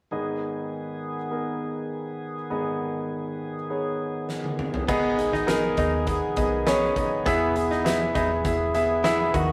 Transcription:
0.11 grand piano G#1 G#2 B3 D#4 G#4 D#5, tonewheel organ D#3 B3 G#4
1.31 grand piano B3 D#4 G#4 A#4
2.50 grand piano G#1 G#2 B3 D#4 G#4 D#5
3.70 grand piano B3 D#4 G#4 C#5
4.29 snare
4.44 high tom
4.59 mid tom
4.74 floor tom
4.88 picked electric bass G#1, grand piano G#2 B3 D#4 G#4 D#5, tonewheel organ D#3 B3 G#4, clean electric guitar B3, kick, crash
5.18 grand piano B3 D#4 G#4 D#5, closed hi-hat
5.33 picked electric bass G#1, clean electric guitar D#4, snare
5.47 grand piano B3 D#4 G#4 A#4, snare, closed hi-hat
5.77 picked electric bass D#2, grand piano B3 D#4 G#4 D#5, clean electric guitar D#4, kick, closed hi-hat
6.06 grand piano B3 D#4 G#4 D#5, kick, closed hi-hat
6.36 picked electric bass B1, grand piano B3 D#4 G#4 D#5, kick, closed hi-hat
6.66 grand piano B3 D#4 G#4 C#5, clean electric guitar C#4, snare, closed hi-hat
6.96 picked electric bass F#1, grand piano B3 D#4 G#4 D#5, kick, closed hi-hat
7.26 picked electric bass E1, tonewheel organ E3, grand piano E3 B3 E4 G#4 E5, clean electric guitar B3, kick, closed hi-hat
7.55 grand piano B3 E4 G#4 E5, closed hi-hat
7.71 clean electric guitar D#4, snare
7.84 grand piano B3 E4 G#4 E5, snare, closed hi-hat
8.15 picked electric bass E1, grand piano B3 E4 G#4 E5, clean electric guitar D#4, kick, closed hi-hat
8.44 picked electric bass E1, grand piano B3 E4 G#4 E5, kick, closed hi-hat
8.74 grand piano B3 E4 G#4 E5, closed hi-hat
9.04 grand piano B3 E4 G#4 E5, clean electric guitar E4, snare, closed hi-hat
9.33 picked electric bass D#2, grand piano D#3 B3 D#4 F#4 D#5, tonewheel organ D#3 F#4, clean electric guitar F#4, kick, closed hi-hat

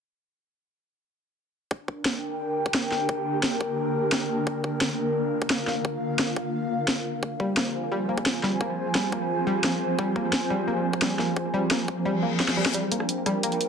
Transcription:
1.71 synth drone D3 A#3 G4, analog synth pad D4, kick
1.88 analog synth pad A#4, kick
2.04 analog synth pad G5, snare
2.66 kick
2.74 snare
2.92 snare
3.09 kick
3.43 snare
3.61 kick
4.12 snare
4.47 synth drone F4, kick
4.64 kick
4.81 snare
5.14 analog synth pad F5
5.42 kick
5.50 snare
5.67 snare
5.85 kick
6.19 snare
6.36 kick
6.88 snare
7.23 synth drone F3 C4 G#4, analog synth pad F4, kick
7.30 analog synth pad C5
7.40 synth arpeggio sound G3, kick
7.57 synth arpeggio sound A#3, snare
7.68 analog synth pad G#5
7.92 synth arpeggio sound G3
8.09 synth arpeggio sound A#3
8.18 kick
8.26 snare
8.43 synth arpeggio sound G3, snare
8.61 synth arpeggio sound A#3, kick
8.95 synth arpeggio sound G3, snare
9.12 synth arpeggio sound A#3, kick
9.47 synth arpeggio sound G3
9.64 synth arpeggio sound A#3, snare
9.99 synth arpeggio sound G3, kick
10.16 synth arpeggio sound A#3, kick
10.33 snare
10.50 synth arpeggio sound G3
10.68 synth arpeggio sound A#3
10.93 kick
11.02 synth arpeggio sound G3, snare
11.19 synth arpeggio sound A#3, snare
11.37 kick
11.54 synth arpeggio sound G3
11.71 synth arpeggio sound A#3, snare
11.88 kick
12.05 synth arpeggio sound G3, reverse cymbal
12.23 synth arpeggio sound A#3
12.40 snare
12.48 snare
12.57 synth arpeggio sound G3
12.66 snare
12.74 synth arpeggio sound G3, synth drone G3 D4 A#4, analog synth pad D4, closed hi-hat
12.90 synth arpeggio sound A#3, analog synth pad A#4 G5, closed hi-hat
13.00 cross-stick
13.09 closed hi-hat
13.26 synth arpeggio sound G3, cross-stick, closed hi-hat
13.43 synth arpeggio sound A#3, closed hi-hat
13.52 closed hi-hat
13.61 closed hi-hat

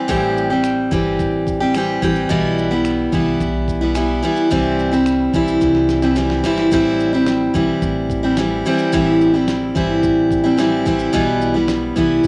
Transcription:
0.08 upright bass A1, steel-string acoustic guitar A2 E3 G3 C4 G4, kick, shaker
0.37 shaker
0.50 steel-string acoustic guitar G3 C4 G4, finger snap
0.64 finger snap, shaker
0.91 upright bass G1, steel-string acoustic guitar E3 G3 C4 G4, kick, shaker
1.19 upright bass A1, kick, shaker
1.47 kick, shaker
1.60 steel-string acoustic guitar G3 C4 G4
1.74 steel-string acoustic guitar E3 G3 C4 G4, finger snap, shaker
2.02 upright bass A1, steel-string acoustic guitar E3 G3 C4 G4, kick, shaker
2.16 shaker
2.29 upright bass B1, steel-string acoustic guitar B2 E3 G3 B3 E4, kick, shaker
2.58 shaker
2.71 steel-string acoustic guitar G3 B3 E4, finger snap
2.85 finger snap, shaker
3.12 upright bass C2, steel-string acoustic guitar E3 G3 B3 E4, kick, shaker
3.40 upright bass B1, kick, shaker
3.68 kick, shaker
3.81 steel-string acoustic guitar G3 B3 E4
3.95 steel-string acoustic guitar E3 G3 B3 E4, finger snap, shaker
4.23 steel-string acoustic guitar E3 G3 B3 E4, shaker
4.36 shaker
4.50 upright bass C2, steel-string acoustic guitar C3 E3 G3 C4 E4, kick, shaker
4.79 shaker
4.91 steel-string acoustic guitar G3 C4 E4, finger snap, shaker
5.06 finger snap, shaker
5.34 upright bass B1, steel-string acoustic guitar E3 G3 C4 E4, kick, shaker
5.48 shaker
5.61 upright bass C2, kick, snare, shaker
5.75 snare
5.89 snare, shaker
6.02 steel-string acoustic guitar G3 C4 E4, snare, shaker
6.16 steel-string acoustic guitar E3 G3 C4 E4, snare, shaker
6.30 snare
6.44 upright bass G1, steel-string acoustic guitar E3 G3 C4 E4, snare, shaker
6.57 snare, shaker
6.72 upright bass A1, steel-string acoustic guitar A2 E3 G3 C4 E4, kick, shaker
7.00 shaker
7.13 steel-string acoustic guitar G3 C4 E4, snare
7.26 snare, shaker
7.54 upright bass B1, steel-string acoustic guitar E3 G3 C4 E4, kick, shaker
7.82 upright bass A1, kick, shaker
8.10 kick, shaker
8.23 steel-string acoustic guitar G3 C4 E4
8.37 steel-string acoustic guitar E3 G3 C4 E4, snare, shaker
8.65 steel-string acoustic guitar E3 G3 C4 E4, shaker
8.79 shaker
8.93 upright bass A1, steel-string acoustic guitar A2 E3 G3 C4 E4, kick, shaker
9.21 shaker
9.33 steel-string acoustic guitar G3 C4 E4, snare
9.48 snare, shaker
9.75 upright bass G1, steel-string acoustic guitar E3 G3 C4 E4, kick, shaker
10.03 upright bass A1, kick, shaker
10.31 kick, shaker
10.44 steel-string acoustic guitar G3 C4 E4
10.57 steel-string acoustic guitar E3 G3 C4 E4, snare, shaker
10.85 upright bass A1, steel-string acoustic guitar E3 G3 C4 E4, kick, shaker
10.99 shaker
11.13 upright bass B1, steel-string acoustic guitar B2 E3 G3 B3 E4, kick, shaker
11.42 shaker
11.54 steel-string acoustic guitar G3 B3 E4, snare
11.68 snare, shaker
11.96 upright bass C2, steel-string acoustic guitar E3 G3 B3 E4, kick, shaker
12.24 upright bass B1, kick, shaker

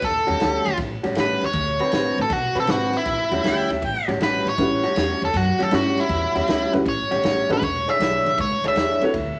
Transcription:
0.02 upright bass E2, overdriven electric guitar A4, kick, snare, ride
0.27 upright bass E2, clean electric guitar A2 G3 C#4 F#4, snare, ride
0.40 upright bass D2, clean electric guitar A2 G3 C#4 F#4, snare, ride
0.66 upright bass D2, snare, ride
0.77 upright bass A1, kick, snare, ride
1.03 upright bass A1, clean electric guitar A2 G3 C#4 F#4, snare, ride
1.15 upright bass A1, clean electric guitar A2 G3 C#4 F#4, snare, ride
1.20 overdriven electric guitar B4
1.41 upright bass E2, snare, ride
1.46 overdriven electric guitar C#5
1.53 upright bass D2, kick, ride
1.79 clean electric guitar D3 C4 F#4 B4, snare, ride
1.92 upright bass A2, clean electric guitar D3 C4 F#4 B4, snare, ride
2.18 upright bass A2, overdriven electric guitar A4, snare, ride
2.30 upright bass B2, overdriven electric guitar F#4, kick, ride
2.55 upright bass B2, clean electric guitar D3 C4 F#4 B4, snare, ride
2.60 overdriven electric guitar A4
2.67 upright bass G#1, clean electric guitar D3 C4 F#4 B4, overdriven electric guitar F#4, snare, ride
2.93 overdriven electric guitar E4, snare, ride
3.05 upright bass A1, kick, ride
3.31 upright bass E2, clean electric guitar A2 G3 C#4 F#4, snare, ride
3.44 upright bass D2, clean electric guitar A2 G3 C#4 F#4, harmonica G5, snare, ride
3.70 upright bass D2, harmonica E5, snare, ride
3.82 upright bass A1, harmonica G5, kick, ride
4.08 upright bass A1, clean electric guitar A2 G3 C#4 F#4, snare, ride
4.20 upright bass A1, clean electric guitar A2 G3 C#4 F#4, overdriven electric guitar B4, snare, ride
4.45 upright bass A1, overdriven electric guitar C#5, snare, ride
4.58 upright bass A1, honky-tonk piano G3 C#4 E4 F#4 B4, kick, ride
4.83 clean electric guitar A2 G3 C#4 F#4, snare, ride
4.96 upright bass E2, clean electric guitar A2 G3 C#4 F#4, snare, ride
5.22 upright bass E2, overdriven electric guitar A4, snare, ride
5.34 upright bass F#2, overdriven electric guitar F#4, kick, snare, ride
5.59 upright bass F#2, clean electric guitar A2 G3 C#4 F#4, overdriven electric guitar A4, snare, ride
5.71 upright bass G2, clean electric guitar A2 G3 C#4 F#4, honky-tonk piano G3 C#4 E4 F#4 C#5, overdriven electric guitar F#4, snare, ride
5.97 overdriven electric guitar E4, snare, ride
6.09 upright bass E2, kick, ride
6.35 upright bass E2, clean electric guitar A2 G3 C#4 F#4, snare, ride
6.47 upright bass D2, clean electric guitar A2 G3 C#4 F#4, snare, ride
6.72 upright bass D2, honky-tonk piano G3 C#4 E4 F#4 B4, snare, ride
6.85 upright bass A1, overdriven electric guitar C#5, kick, ride
7.11 upright bass A1, clean electric guitar A2 G3 C#4 F#4, snare, ride
7.23 upright bass A1, clean electric guitar A2 G3 C#4 F#4, snare, ride
7.49 upright bass A1, honky-tonk piano G#3 C#4 D4 F#4 B4, overdriven electric guitar B4, snare, ride
7.62 upright bass E1, overdriven electric guitar C#5, kick, ride
7.88 clean electric guitar E3 D4 G#4 C#5, overdriven electric guitar E5, snare, ride
7.99 upright bass B1, clean electric guitar E3 D4 C#5, snare, ride
8.25 upright bass B1, snare, ride
8.38 upright bass C#2, overdriven electric guitar C#5, kick, snare, ride
8.64 upright bass C#2, clean electric guitar E3 D4 G#4 C#5, snare, ride
8.68 overdriven electric guitar E5
8.75 upright bass E2, clean electric guitar E3 D4 G#4 C#5, snare, ride
9.01 honky-tonk piano A3 C4 E4 F#4 B4, harmonica C#5, snare, ride
9.14 upright bass D2, harmonica E5, kick, ride

